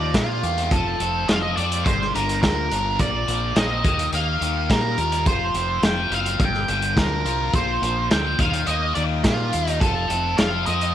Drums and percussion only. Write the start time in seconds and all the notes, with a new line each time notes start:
0.14 kick, snare, closed hi-hat
0.43 closed hi-hat
0.58 closed hi-hat
0.71 kick, closed hi-hat
1.00 closed hi-hat
1.29 snare, closed hi-hat
1.57 closed hi-hat
1.72 closed hi-hat
1.86 kick, closed hi-hat
2.02 snare
2.15 closed hi-hat
2.29 closed hi-hat
2.43 kick, snare, closed hi-hat
2.71 closed hi-hat
2.99 kick, closed hi-hat
3.28 closed hi-hat
3.56 snare, closed hi-hat
3.85 kick, closed hi-hat
3.99 closed hi-hat
4.13 closed hi-hat
4.42 closed hi-hat
4.70 kick, snare, closed hi-hat
4.98 closed hi-hat
5.12 closed hi-hat
5.26 kick, closed hi-hat
5.54 closed hi-hat
5.83 snare, closed hi-hat
6.12 closed hi-hat
6.26 closed hi-hat
6.40 kick, closed hi-hat
6.54 snare
6.68 closed hi-hat
6.82 closed hi-hat
6.97 kick, snare, closed hi-hat
7.26 closed hi-hat
7.54 kick, closed hi-hat
7.83 closed hi-hat
8.11 snare, closed hi-hat
8.39 kick, closed hi-hat
8.53 closed hi-hat
8.67 closed hi-hat
8.95 closed hi-hat
9.24 kick, snare, closed hi-hat
9.53 closed hi-hat
9.68 closed hi-hat
9.81 kick, closed hi-hat
10.10 closed hi-hat
10.38 snare, closed hi-hat
10.66 closed hi-hat
10.81 closed hi-hat